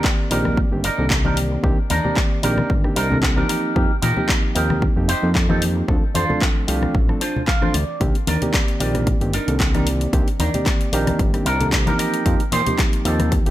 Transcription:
Already playing: D#3 A#3 C4 G4 D5
0.04 kick, clap
0.30 A#1 D#3 A#3 C4 D4 D#4 G4 A#4 D5, open hi-hat
0.45 cross-stick, high conga, low conga
0.57 kick
0.72 G1 D#3 A#3 C4 D4 G4
0.84 D4 D#4 A#4, open hi-hat
0.98 C2 D#3 A#3 C4 D4 A4
1.10 kick, clap
1.25 D#3 A#3 C4 D4 D#4 G4 A#4 D5, cross-stick, high conga
1.37 open hi-hat
1.51 muted clean electric guitar stroke
1.63 C2 D#3 A#3 C4 D4 G4, kick
1.90 D#2 D4 D#4 A#4, open hi-hat, high conga
2.04 D#3 A#3 C4 G4 D5, low conga
2.17 kick, clap
2.43 A#1 D#3 A#3 C4 D4 D#4 G4 A#4 D5, open hi-hat
2.57 cross-stick, high conga, low conga
2.70 G1, kick
2.84 D#3 A#3 C4 D4 G4, cross-stick
2.96 C2 D4 D#4 A#4, open hi-hat
3.10 D#3 A#3 C4 D4 A4, low conga
3.23 kick, clap
3.37 F3 A#3 C4 D4 D#4 G4 A#4, cross-stick, high conga
3.49 D#4 G4 A#4, open hi-hat
3.76 F2 F3 A#3 C4 D#4 G4, kick
4.02 A#2 D#4 G4 A#4, open hi-hat, high conga
4.17 F3 A#3 C4 D#4 G4, low conga
4.29 kick, clap
4.55 D#2 F3 A#3 C4 D#4 G4 A#4, open hi-hat
4.70 cross-stick, high conga, low conga
4.82 kick
4.96 F1 F3 A#3 C4 D#4 G4
5.08 D#4 G4 C5, open hi-hat
5.22 F2 F3 A#3 C4 D#4 A4
5.35 kick, clap
5.49 F3 A#3 C4 D#4 G4 A4, cross-stick, high conga
5.62 open hi-hat
5.76 muted clean electric guitar stroke
5.88 D2 F3 A3 C4 D4 A4, kick
6.14 F2 D4 F4 C5, open hi-hat, high conga
6.29 F3 A3 C4 D4 A4, low conga
6.42 kick, clap
6.68 C2 F3 A3 C4 D4 F4 G4 A4, open hi-hat
6.82 cross-stick, high conga, low conga
6.95 A1, kick
7.08 F3 A3 C4 D4 A4, cross-stick
7.20 D4 F4 C5 A5, open hi-hat
7.36 low conga
7.48 F5, kick, clap
7.61 F3 A3 C4 D4 F4 A4 C5, cross-stick, high conga
7.74 D2 D5, open hi-hat
7.88 muted clean electric guitar stroke
8.00 C2 D#3 A#3 C4 D4 G4, kick, closed hi-hat
8.15 closed hi-hat
8.27 D#2 D4 D#4 A#4, open hi-hat, high conga
8.42 D#3 A#3 C4 G4 D5, closed hi-hat, low conga
8.54 kick, clap, closed hi-hat
8.68 closed hi-hat
8.80 A#1 D#3 A#3 C4 D4 D#4 G4 A#4 D5, open hi-hat
8.94 cross-stick, closed hi-hat, high conga, low conga
9.07 kick, closed hi-hat
9.21 G1 D#3 A#3 C4 D4 G4, closed hi-hat
9.33 D4 D#4 A#4, open hi-hat
9.47 C2 D#3 A#3 C4 D4 A4, closed hi-hat
9.60 kick, clap, closed hi-hat
9.74 D#3 A#3 C4 D4 D#4 G4 A#4 D5, cross-stick, closed hi-hat, high conga
9.87 open hi-hat
10.01 muted clean electric guitar stroke, closed hi-hat
10.13 C2 D#3 A#3 C4 D4 G4, kick, closed hi-hat
10.28 closed hi-hat
10.39 D#2 D4 D#4 A#4, open hi-hat, high conga
10.54 D#3 A#3 C4 G4 D5, closed hi-hat, low conga
10.66 kick, clap, closed hi-hat
10.81 closed hi-hat
10.93 A#1 D#3 A#3 C4 D4 D#4 G4 A#4 D5, open hi-hat
11.07 cross-stick, closed hi-hat, high conga, low conga
11.19 G1, kick, closed hi-hat
11.33 D#3 A#3 C4 D4 G4, cross-stick, closed hi-hat
11.46 C2 D4 D#4 A#4, open hi-hat
11.60 D#3 A#3 C4 D4 A4, closed hi-hat, low conga
11.73 kick, clap, closed hi-hat
11.87 F3 A#3 C4 D4 D#4 G4 A#4, cross-stick, closed hi-hat, high conga
11.99 D#4 G4 A#4, open hi-hat
12.14 closed hi-hat
12.25 F2 F3 A#3 C4 D#4 G4, kick, closed hi-hat
12.40 closed hi-hat
12.52 A#2 D#4 G4 C5, open hi-hat, high conga
12.66 F3 A#3 C4 D#4 G4, closed hi-hat, low conga
12.79 kick, clap, closed hi-hat
12.93 closed hi-hat
13.05 D#2 F3 A#3 C4 D#4 G4 A4, open hi-hat
13.19 cross-stick, closed hi-hat, high conga, low conga
13.32 kick, closed hi-hat
13.46 F1 F3 A#3 C4 D#4 G4, closed hi-hat

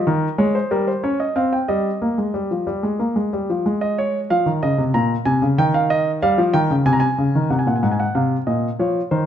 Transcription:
Already playing: D#5
0.07 D#3
0.38 G#3 C#5
0.55 C5
0.71 G3 A#4
0.87 C5
1.03 C#4 C#5
1.20 D#5
1.36 C4 F5
1.53 G5
1.68 G3 D#5
2.02 A#3
2.18 G#3
2.34 G3
2.51 F3
2.67 G3
2.83 G#3
2.99 A#3
3.16 G#3
3.33 G3
3.50 F3
3.66 G#3
3.81 D#5
3.98 C#5
4.30 F3 F5
4.46 D#3
4.63 C#3 D#5
4.78 C3
4.94 A#2 A#5
5.25 C3 G#5
5.42 C#3
5.58 D#3 G5
5.74 F5
5.90 D#5
6.22 G3 F5
6.38 F3
6.54 D#3 G5
6.70 C#3
6.86 C3 G#5
6.93 A#5
7.00 G#5
7.18 C#3
7.35 D#3
7.50 C3 F#5
7.59 G#5
7.67 A#2 F#5
7.76 G#5
7.83 G#2 F#5
7.92 G#5
8.00 F#5
8.15 C3 F5
8.47 A#2 D#5
8.79 F3 C#5
9.11 D#3 C5

